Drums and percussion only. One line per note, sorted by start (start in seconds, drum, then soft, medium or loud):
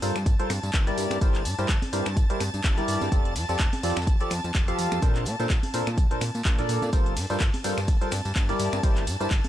0.02 open hi-hat loud
0.02 tambourine medium
0.16 finger snap medium
0.16 snare soft
0.16 closed hi-hat soft
0.16 tambourine soft
0.26 kick loud
0.26 closed hi-hat medium
0.26 tambourine medium
0.26 tambourine soft
0.26 tambourine medium
0.40 closed hi-hat soft
0.50 finger snap medium
0.50 open hi-hat loud
0.50 tambourine medium
0.50 high conga medium
0.63 closed hi-hat soft
0.63 tambourine soft
0.74 kick loud
0.74 snare loud
0.74 clap loud
0.74 closed hi-hat medium
0.74 tambourine medium
0.74 tambourine soft
0.87 closed hi-hat soft
0.87 tambourine soft
0.98 open hi-hat loud
0.98 tambourine medium
1.10 finger snap medium
1.10 closed hi-hat soft
1.10 tambourine soft
1.10 high conga loud
1.21 kick loud
1.21 closed hi-hat medium
1.21 tambourine medium
1.21 tambourine soft
1.35 clap soft
1.35 closed hi-hat soft
1.35 tambourine soft
1.45 open hi-hat loud
1.45 tambourine medium
1.45 tambourine loud
1.58 closed hi-hat soft
1.58 tambourine soft
1.69 kick loud
1.69 snare loud
1.69 clap loud
1.69 closed hi-hat medium
1.69 tambourine medium
1.69 tambourine soft
1.82 open hi-hat medium
1.82 tambourine soft
1.82 high conga loud
1.93 open hi-hat loud
1.93 tambourine medium
2.06 finger snap medium
2.06 snare medium
2.06 closed hi-hat soft
2.06 tambourine soft
2.16 kick loud
2.16 closed hi-hat medium
2.16 tambourine medium
2.16 tambourine soft
2.30 closed hi-hat soft
2.40 finger snap medium
2.40 open hi-hat loud
2.40 tambourine loud
2.40 tambourine medium
2.40 high conga medium
2.54 closed hi-hat soft
2.54 tambourine soft
2.64 kick loud
2.64 snare loud
2.64 clap loud
2.64 closed hi-hat medium
2.64 tambourine medium
2.64 tambourine soft
2.77 snare soft
2.77 closed hi-hat soft
2.77 tambourine soft
2.88 open hi-hat loud
2.88 tambourine medium
3.01 snare soft
3.01 closed hi-hat soft
3.01 tambourine soft
3.01 high conga medium
3.12 kick loud
3.12 closed hi-hat medium
3.12 tambourine medium
3.12 tambourine soft
3.25 closed hi-hat soft
3.36 open hi-hat medium
3.36 open hi-hat loud
3.36 tambourine loud
3.36 tambourine medium
3.48 closed hi-hat soft
3.48 tambourine soft
3.59 kick loud
3.59 snare loud
3.59 clap loud
3.59 closed hi-hat medium
3.59 tambourine medium
3.73 open hi-hat medium
3.73 tambourine soft
3.73 high conga loud
3.83 snare medium
3.83 open hi-hat loud
3.83 tambourine medium
3.83 tambourine loud
3.90 snare medium
3.90 tambourine medium
3.96 finger snap medium
3.96 snare medium
3.96 closed hi-hat soft
3.96 tambourine soft
3.96 tambourine medium
3.96 tambourine soft
4.02 snare medium
4.02 tambourine medium
4.07 kick loud
4.07 closed hi-hat medium
4.07 tambourine medium
4.07 tambourine soft
4.21 closed hi-hat soft
4.30 finger snap medium
4.30 open hi-hat loud
4.30 tambourine loud
4.30 tambourine medium
4.30 high conga medium
4.44 closed hi-hat soft
4.44 tambourine soft
4.55 kick loud
4.55 snare loud
4.55 clap loud
4.55 closed hi-hat medium
4.55 tambourine medium
4.55 tambourine soft
4.55 tambourine medium
4.68 closed hi-hat soft
4.68 tambourine soft
4.79 open hi-hat loud
4.79 tambourine medium
4.92 finger snap medium
4.92 closed hi-hat soft
4.92 tambourine soft
4.92 high conga medium
5.02 kick loud
5.02 closed hi-hat medium
5.02 tambourine medium
5.02 tambourine soft
5.15 clap soft
5.15 closed hi-hat soft
5.15 tambourine soft
5.26 open hi-hat loud
5.26 tambourine medium
5.40 closed hi-hat soft
5.40 tambourine soft
5.50 kick loud
5.50 snare loud
5.50 clap loud
5.50 closed hi-hat medium
5.50 tambourine medium
5.50 tambourine soft
5.63 open hi-hat medium
5.63 tambourine soft
5.63 high conga medium
5.74 open hi-hat loud
5.74 tambourine medium
5.87 finger snap medium
5.87 snare medium
5.87 closed hi-hat soft
5.87 tambourine soft
5.98 kick loud
5.98 closed hi-hat medium
5.98 tambourine medium
5.98 tambourine soft
6.11 closed hi-hat soft
6.21 finger snap medium
6.21 open hi-hat loud
6.21 tambourine loud
6.21 tambourine medium
6.21 high conga medium
6.35 closed hi-hat soft
6.35 tambourine soft
6.45 kick loud
6.45 snare loud
6.45 clap loud
6.45 closed hi-hat medium
6.45 tambourine medium
6.45 tambourine soft
6.58 snare soft
6.58 closed hi-hat soft
6.58 tambourine soft
6.69 open hi-hat loud
6.69 tambourine medium
6.82 snare soft
6.82 closed hi-hat soft
6.82 tambourine soft
6.82 high conga loud
6.92 kick loud
6.92 closed hi-hat medium
6.92 ride medium
6.92 tambourine medium
6.92 tambourine soft
7.06 closed hi-hat soft
7.17 open hi-hat loud
7.17 open hi-hat medium
7.17 ride medium
7.17 tambourine medium
7.30 closed hi-hat soft
7.30 tambourine soft
7.40 kick loud
7.40 snare loud
7.40 clap loud
7.40 closed hi-hat medium
7.40 ride medium
7.40 tambourine medium
7.40 tambourine soft
7.54 open hi-hat medium
7.54 tambourine soft
7.54 high conga medium
7.64 open hi-hat loud
7.64 ride medium
7.64 tambourine medium
7.64 tambourine loud
7.78 finger snap medium
7.78 snare soft
7.78 closed hi-hat soft
7.78 tambourine soft
7.87 kick loud
7.87 closed hi-hat medium
7.87 ride medium
7.87 tambourine medium
7.87 tambourine soft
8.01 closed hi-hat soft
8.11 finger snap medium
8.11 open hi-hat loud
8.11 ride medium
8.11 tambourine medium
8.11 high conga medium
8.25 closed hi-hat soft
8.25 tambourine soft
8.35 kick loud
8.35 snare loud
8.35 clap loud
8.35 closed hi-hat medium
8.35 ride medium
8.35 tambourine medium
8.35 tambourine soft
8.49 closed hi-hat soft
8.49 tambourine soft
8.60 open hi-hat loud
8.60 ride medium
8.60 tambourine medium
8.73 finger snap medium
8.73 closed hi-hat soft
8.73 tambourine soft
8.73 high conga medium
8.83 kick loud
8.83 closed hi-hat medium
8.83 ride medium
8.83 tambourine medium
8.83 tambourine soft
8.96 clap soft
8.96 closed hi-hat soft
8.96 tambourine soft
9.07 open hi-hat loud
9.07 ride medium
9.07 tambourine medium
9.21 closed hi-hat soft
9.21 tambourine soft
9.31 kick loud
9.31 snare loud
9.31 clap loud
9.31 closed hi-hat medium
9.31 ride medium
9.31 tambourine medium
9.31 tambourine soft
9.44 open hi-hat medium
9.44 tambourine soft
9.44 high conga medium